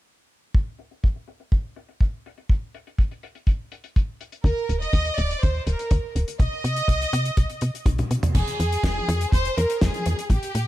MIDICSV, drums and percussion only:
0, 0, Header, 1, 2, 480
1, 0, Start_track
1, 0, Tempo, 487805
1, 537, Time_signature, 4, 2, 24, 8
1, 10502, End_track
2, 0, Start_track
2, 0, Title_t, "Drums"
2, 536, Note_on_c, 9, 42, 81
2, 537, Note_on_c, 9, 36, 110
2, 635, Note_off_c, 9, 36, 0
2, 635, Note_off_c, 9, 42, 0
2, 773, Note_on_c, 9, 42, 83
2, 872, Note_off_c, 9, 42, 0
2, 897, Note_on_c, 9, 42, 56
2, 995, Note_off_c, 9, 42, 0
2, 1017, Note_on_c, 9, 42, 85
2, 1021, Note_on_c, 9, 36, 92
2, 1115, Note_off_c, 9, 42, 0
2, 1119, Note_off_c, 9, 36, 0
2, 1135, Note_on_c, 9, 42, 46
2, 1233, Note_off_c, 9, 42, 0
2, 1256, Note_on_c, 9, 42, 85
2, 1354, Note_off_c, 9, 42, 0
2, 1377, Note_on_c, 9, 42, 62
2, 1475, Note_off_c, 9, 42, 0
2, 1494, Note_on_c, 9, 42, 80
2, 1495, Note_on_c, 9, 36, 102
2, 1592, Note_off_c, 9, 42, 0
2, 1593, Note_off_c, 9, 36, 0
2, 1735, Note_on_c, 9, 42, 83
2, 1833, Note_off_c, 9, 42, 0
2, 1855, Note_on_c, 9, 42, 58
2, 1954, Note_off_c, 9, 42, 0
2, 1973, Note_on_c, 9, 36, 94
2, 1978, Note_on_c, 9, 42, 83
2, 2072, Note_off_c, 9, 36, 0
2, 2076, Note_off_c, 9, 42, 0
2, 2224, Note_on_c, 9, 42, 82
2, 2323, Note_off_c, 9, 42, 0
2, 2338, Note_on_c, 9, 42, 59
2, 2437, Note_off_c, 9, 42, 0
2, 2454, Note_on_c, 9, 36, 101
2, 2459, Note_on_c, 9, 42, 87
2, 2553, Note_off_c, 9, 36, 0
2, 2558, Note_off_c, 9, 42, 0
2, 2701, Note_on_c, 9, 42, 88
2, 2799, Note_off_c, 9, 42, 0
2, 2824, Note_on_c, 9, 42, 60
2, 2922, Note_off_c, 9, 42, 0
2, 2937, Note_on_c, 9, 36, 96
2, 2938, Note_on_c, 9, 42, 83
2, 3035, Note_off_c, 9, 36, 0
2, 3036, Note_off_c, 9, 42, 0
2, 3064, Note_on_c, 9, 42, 51
2, 3162, Note_off_c, 9, 42, 0
2, 3180, Note_on_c, 9, 42, 81
2, 3278, Note_off_c, 9, 42, 0
2, 3298, Note_on_c, 9, 42, 58
2, 3397, Note_off_c, 9, 42, 0
2, 3412, Note_on_c, 9, 42, 82
2, 3413, Note_on_c, 9, 36, 105
2, 3511, Note_off_c, 9, 36, 0
2, 3511, Note_off_c, 9, 42, 0
2, 3657, Note_on_c, 9, 42, 79
2, 3756, Note_off_c, 9, 42, 0
2, 3777, Note_on_c, 9, 42, 63
2, 3875, Note_off_c, 9, 42, 0
2, 3898, Note_on_c, 9, 36, 108
2, 3900, Note_on_c, 9, 42, 83
2, 3997, Note_off_c, 9, 36, 0
2, 3999, Note_off_c, 9, 42, 0
2, 4139, Note_on_c, 9, 42, 78
2, 4237, Note_off_c, 9, 42, 0
2, 4254, Note_on_c, 9, 42, 63
2, 4352, Note_off_c, 9, 42, 0
2, 4369, Note_on_c, 9, 36, 111
2, 4382, Note_on_c, 9, 42, 87
2, 4468, Note_off_c, 9, 36, 0
2, 4480, Note_off_c, 9, 42, 0
2, 4619, Note_on_c, 9, 42, 90
2, 4718, Note_off_c, 9, 42, 0
2, 4744, Note_on_c, 9, 42, 65
2, 4842, Note_off_c, 9, 42, 0
2, 4852, Note_on_c, 9, 36, 94
2, 4852, Note_on_c, 9, 42, 81
2, 4951, Note_off_c, 9, 36, 0
2, 4951, Note_off_c, 9, 42, 0
2, 4968, Note_on_c, 9, 42, 51
2, 5067, Note_off_c, 9, 42, 0
2, 5095, Note_on_c, 9, 42, 75
2, 5194, Note_off_c, 9, 42, 0
2, 5222, Note_on_c, 9, 42, 64
2, 5321, Note_off_c, 9, 42, 0
2, 5345, Note_on_c, 9, 42, 80
2, 5346, Note_on_c, 9, 36, 127
2, 5443, Note_off_c, 9, 42, 0
2, 5445, Note_off_c, 9, 36, 0
2, 5577, Note_on_c, 9, 42, 74
2, 5676, Note_off_c, 9, 42, 0
2, 5700, Note_on_c, 9, 42, 60
2, 5798, Note_off_c, 9, 42, 0
2, 5813, Note_on_c, 9, 42, 77
2, 5816, Note_on_c, 9, 36, 106
2, 5911, Note_off_c, 9, 42, 0
2, 5914, Note_off_c, 9, 36, 0
2, 6060, Note_on_c, 9, 42, 74
2, 6159, Note_off_c, 9, 42, 0
2, 6178, Note_on_c, 9, 42, 65
2, 6276, Note_off_c, 9, 42, 0
2, 6294, Note_on_c, 9, 36, 119
2, 6296, Note_on_c, 9, 42, 77
2, 6392, Note_off_c, 9, 36, 0
2, 6394, Note_off_c, 9, 42, 0
2, 6540, Note_on_c, 9, 42, 82
2, 6639, Note_off_c, 9, 42, 0
2, 6657, Note_on_c, 9, 42, 68
2, 6755, Note_off_c, 9, 42, 0
2, 6771, Note_on_c, 9, 36, 99
2, 6779, Note_on_c, 9, 42, 81
2, 6869, Note_off_c, 9, 36, 0
2, 6877, Note_off_c, 9, 42, 0
2, 6906, Note_on_c, 9, 42, 56
2, 7004, Note_off_c, 9, 42, 0
2, 7019, Note_on_c, 9, 42, 84
2, 7117, Note_off_c, 9, 42, 0
2, 7138, Note_on_c, 9, 42, 62
2, 7236, Note_off_c, 9, 42, 0
2, 7253, Note_on_c, 9, 42, 88
2, 7256, Note_on_c, 9, 36, 107
2, 7352, Note_off_c, 9, 42, 0
2, 7354, Note_off_c, 9, 36, 0
2, 7376, Note_on_c, 9, 42, 52
2, 7474, Note_off_c, 9, 42, 0
2, 7490, Note_on_c, 9, 42, 84
2, 7589, Note_off_c, 9, 42, 0
2, 7625, Note_on_c, 9, 42, 62
2, 7724, Note_off_c, 9, 42, 0
2, 7731, Note_on_c, 9, 36, 114
2, 7734, Note_on_c, 9, 42, 84
2, 7734, Note_on_c, 9, 48, 57
2, 7830, Note_off_c, 9, 36, 0
2, 7833, Note_off_c, 9, 42, 0
2, 7833, Note_off_c, 9, 48, 0
2, 7857, Note_on_c, 9, 42, 49
2, 7862, Note_on_c, 9, 48, 59
2, 7955, Note_off_c, 9, 42, 0
2, 7961, Note_off_c, 9, 48, 0
2, 7977, Note_on_c, 9, 42, 78
2, 8076, Note_off_c, 9, 42, 0
2, 8098, Note_on_c, 9, 45, 87
2, 8104, Note_on_c, 9, 42, 59
2, 8196, Note_off_c, 9, 45, 0
2, 8202, Note_off_c, 9, 42, 0
2, 8213, Note_on_c, 9, 49, 86
2, 8214, Note_on_c, 9, 36, 117
2, 8215, Note_on_c, 9, 42, 87
2, 8312, Note_off_c, 9, 36, 0
2, 8312, Note_off_c, 9, 49, 0
2, 8314, Note_off_c, 9, 42, 0
2, 8340, Note_on_c, 9, 42, 59
2, 8439, Note_off_c, 9, 42, 0
2, 8461, Note_on_c, 9, 42, 83
2, 8560, Note_off_c, 9, 42, 0
2, 8585, Note_on_c, 9, 42, 63
2, 8683, Note_off_c, 9, 42, 0
2, 8693, Note_on_c, 9, 36, 108
2, 8695, Note_on_c, 9, 42, 85
2, 8700, Note_on_c, 9, 38, 109
2, 8792, Note_off_c, 9, 36, 0
2, 8793, Note_off_c, 9, 42, 0
2, 8799, Note_off_c, 9, 38, 0
2, 8941, Note_on_c, 9, 42, 89
2, 9040, Note_off_c, 9, 42, 0
2, 9062, Note_on_c, 9, 42, 68
2, 9160, Note_off_c, 9, 42, 0
2, 9175, Note_on_c, 9, 36, 113
2, 9182, Note_on_c, 9, 42, 84
2, 9273, Note_off_c, 9, 36, 0
2, 9281, Note_off_c, 9, 42, 0
2, 9300, Note_on_c, 9, 42, 51
2, 9399, Note_off_c, 9, 42, 0
2, 9424, Note_on_c, 9, 42, 80
2, 9522, Note_off_c, 9, 42, 0
2, 9541, Note_on_c, 9, 42, 70
2, 9640, Note_off_c, 9, 42, 0
2, 9657, Note_on_c, 9, 38, 119
2, 9663, Note_on_c, 9, 36, 103
2, 9663, Note_on_c, 9, 42, 86
2, 9756, Note_off_c, 9, 38, 0
2, 9761, Note_off_c, 9, 36, 0
2, 9761, Note_off_c, 9, 42, 0
2, 9782, Note_on_c, 9, 42, 51
2, 9880, Note_off_c, 9, 42, 0
2, 9895, Note_on_c, 9, 42, 83
2, 9994, Note_off_c, 9, 42, 0
2, 10025, Note_on_c, 9, 42, 64
2, 10123, Note_off_c, 9, 42, 0
2, 10133, Note_on_c, 9, 36, 109
2, 10135, Note_on_c, 9, 42, 80
2, 10232, Note_off_c, 9, 36, 0
2, 10233, Note_off_c, 9, 42, 0
2, 10260, Note_on_c, 9, 42, 53
2, 10358, Note_off_c, 9, 42, 0
2, 10381, Note_on_c, 9, 42, 84
2, 10480, Note_off_c, 9, 42, 0
2, 10502, End_track
0, 0, End_of_file